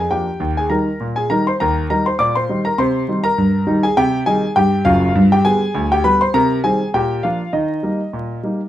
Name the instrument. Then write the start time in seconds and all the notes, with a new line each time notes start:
grand piano
Already playing: G#5
0.00 G#4
0.11 F3 A#3 D4 G4 G5
0.40 D#2
0.57 G#4 G#5
0.69 D#3 G3 D#4 A#4 A#5
1.00 A#2
1.16 G#4 G#5
1.30 D#3 G3 D#4 A#4 A#5
1.47 C5 C6
1.60 D#2 A#4 A#5
1.90 D#3 G3 D#4 A#4 A#5
2.06 C5 C6
2.19 A#2 D5 D6
2.35 C5 C6
2.49 D#3 G3 D#4
2.65 A#4 A#5
2.78 C3 C5 C6
3.08 D#3 G3 D#4
3.24 A#4 A#5
3.38 G2
3.67 D#3 G3 D#4
3.83 G#4 G#5
3.97 C3 G4 G5
4.26 D#3 G3 D#4 G#4 G#5
4.56 G2 G4 G5
4.85 F#1 F#2 F4 F5
5.15 G2
5.32 G4 G5
5.45 D3 G3 B3 G#4 G#5
5.74 D2
5.92 G4 G5
6.04 D3 G3 B3 B4 B5
6.21 C5 C6
6.34 C3 A#4 A#5
6.64 D#3 G3 C4 G#4 G#5
6.94 A#2 G4 G5
7.23 F3 A#3 D4 F4 F5
7.53 D#3 D#4 D#5
7.83 G3 A#3 D#4
8.13 A#2
8.43 G3 A#3 D#4